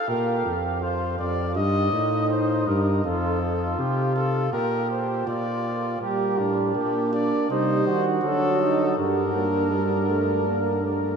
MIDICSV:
0, 0, Header, 1, 5, 480
1, 0, Start_track
1, 0, Key_signature, -2, "major"
1, 0, Tempo, 741656
1, 56, Time_signature, 4, 2, 24, 8
1, 3889, Key_signature, -2, "minor"
1, 7227, End_track
2, 0, Start_track
2, 0, Title_t, "Trumpet"
2, 0, Program_c, 0, 56
2, 0, Note_on_c, 0, 77, 85
2, 57, Note_on_c, 0, 70, 66
2, 66, Note_off_c, 0, 77, 0
2, 365, Note_off_c, 0, 70, 0
2, 529, Note_on_c, 0, 72, 64
2, 752, Note_off_c, 0, 72, 0
2, 768, Note_on_c, 0, 74, 71
2, 1004, Note_off_c, 0, 74, 0
2, 1006, Note_on_c, 0, 75, 80
2, 1477, Note_off_c, 0, 75, 0
2, 1489, Note_on_c, 0, 72, 66
2, 1730, Note_on_c, 0, 70, 65
2, 1739, Note_off_c, 0, 72, 0
2, 1967, Note_off_c, 0, 70, 0
2, 1971, Note_on_c, 0, 69, 59
2, 2441, Note_off_c, 0, 69, 0
2, 2452, Note_on_c, 0, 67, 59
2, 2686, Note_off_c, 0, 67, 0
2, 2691, Note_on_c, 0, 69, 66
2, 2926, Note_off_c, 0, 69, 0
2, 2932, Note_on_c, 0, 70, 70
2, 3167, Note_off_c, 0, 70, 0
2, 3173, Note_on_c, 0, 72, 60
2, 3407, Note_off_c, 0, 72, 0
2, 3413, Note_on_c, 0, 74, 69
2, 3881, Note_off_c, 0, 74, 0
2, 3889, Note_on_c, 0, 70, 50
2, 4345, Note_off_c, 0, 70, 0
2, 4376, Note_on_c, 0, 67, 63
2, 4609, Note_off_c, 0, 67, 0
2, 4613, Note_on_c, 0, 74, 64
2, 4848, Note_off_c, 0, 74, 0
2, 4855, Note_on_c, 0, 72, 67
2, 5220, Note_off_c, 0, 72, 0
2, 5330, Note_on_c, 0, 69, 63
2, 5801, Note_off_c, 0, 69, 0
2, 5810, Note_on_c, 0, 70, 61
2, 7227, Note_off_c, 0, 70, 0
2, 7227, End_track
3, 0, Start_track
3, 0, Title_t, "Flugelhorn"
3, 0, Program_c, 1, 56
3, 53, Note_on_c, 1, 67, 70
3, 531, Note_on_c, 1, 65, 64
3, 541, Note_off_c, 1, 67, 0
3, 842, Note_off_c, 1, 65, 0
3, 1008, Note_on_c, 1, 63, 67
3, 1941, Note_off_c, 1, 63, 0
3, 1971, Note_on_c, 1, 65, 68
3, 2205, Note_off_c, 1, 65, 0
3, 2208, Note_on_c, 1, 65, 70
3, 2931, Note_on_c, 1, 67, 68
3, 2940, Note_off_c, 1, 65, 0
3, 3411, Note_on_c, 1, 65, 64
3, 3421, Note_off_c, 1, 67, 0
3, 3884, Note_off_c, 1, 65, 0
3, 3888, Note_on_c, 1, 67, 68
3, 4131, Note_on_c, 1, 62, 65
3, 4141, Note_off_c, 1, 67, 0
3, 4610, Note_off_c, 1, 62, 0
3, 4614, Note_on_c, 1, 62, 68
3, 4846, Note_off_c, 1, 62, 0
3, 4850, Note_on_c, 1, 63, 77
3, 5086, Note_off_c, 1, 63, 0
3, 5092, Note_on_c, 1, 66, 75
3, 5561, Note_off_c, 1, 66, 0
3, 5571, Note_on_c, 1, 63, 73
3, 5807, Note_off_c, 1, 63, 0
3, 5812, Note_on_c, 1, 62, 63
3, 7227, Note_off_c, 1, 62, 0
3, 7227, End_track
4, 0, Start_track
4, 0, Title_t, "Euphonium"
4, 0, Program_c, 2, 58
4, 3893, Note_on_c, 2, 55, 64
4, 4347, Note_off_c, 2, 55, 0
4, 4374, Note_on_c, 2, 58, 62
4, 4844, Note_off_c, 2, 58, 0
4, 4854, Note_on_c, 2, 55, 72
4, 5322, Note_off_c, 2, 55, 0
4, 5328, Note_on_c, 2, 54, 71
4, 5800, Note_off_c, 2, 54, 0
4, 5809, Note_on_c, 2, 55, 62
4, 6044, Note_off_c, 2, 55, 0
4, 6048, Note_on_c, 2, 58, 55
4, 6290, Note_on_c, 2, 55, 53
4, 6299, Note_off_c, 2, 58, 0
4, 6523, Note_off_c, 2, 55, 0
4, 6527, Note_on_c, 2, 57, 56
4, 6766, Note_off_c, 2, 57, 0
4, 6771, Note_on_c, 2, 58, 58
4, 7008, Note_off_c, 2, 58, 0
4, 7015, Note_on_c, 2, 57, 48
4, 7227, Note_off_c, 2, 57, 0
4, 7227, End_track
5, 0, Start_track
5, 0, Title_t, "Bass trombone"
5, 0, Program_c, 3, 57
5, 54, Note_on_c, 3, 46, 83
5, 276, Note_off_c, 3, 46, 0
5, 293, Note_on_c, 3, 41, 72
5, 761, Note_off_c, 3, 41, 0
5, 771, Note_on_c, 3, 41, 82
5, 1008, Note_on_c, 3, 43, 84
5, 1018, Note_off_c, 3, 41, 0
5, 1242, Note_off_c, 3, 43, 0
5, 1246, Note_on_c, 3, 45, 81
5, 1717, Note_off_c, 3, 45, 0
5, 1729, Note_on_c, 3, 43, 81
5, 1964, Note_off_c, 3, 43, 0
5, 1967, Note_on_c, 3, 41, 88
5, 2439, Note_off_c, 3, 41, 0
5, 2450, Note_on_c, 3, 48, 79
5, 2921, Note_off_c, 3, 48, 0
5, 2929, Note_on_c, 3, 46, 82
5, 3399, Note_off_c, 3, 46, 0
5, 3409, Note_on_c, 3, 46, 71
5, 3879, Note_off_c, 3, 46, 0
5, 3887, Note_on_c, 3, 46, 62
5, 4112, Note_off_c, 3, 46, 0
5, 4128, Note_on_c, 3, 45, 55
5, 4365, Note_off_c, 3, 45, 0
5, 4369, Note_on_c, 3, 46, 59
5, 4740, Note_off_c, 3, 46, 0
5, 4850, Note_on_c, 3, 48, 66
5, 5084, Note_off_c, 3, 48, 0
5, 5088, Note_on_c, 3, 51, 65
5, 5324, Note_off_c, 3, 51, 0
5, 5327, Note_on_c, 3, 50, 64
5, 5800, Note_off_c, 3, 50, 0
5, 5809, Note_on_c, 3, 43, 64
5, 7227, Note_off_c, 3, 43, 0
5, 7227, End_track
0, 0, End_of_file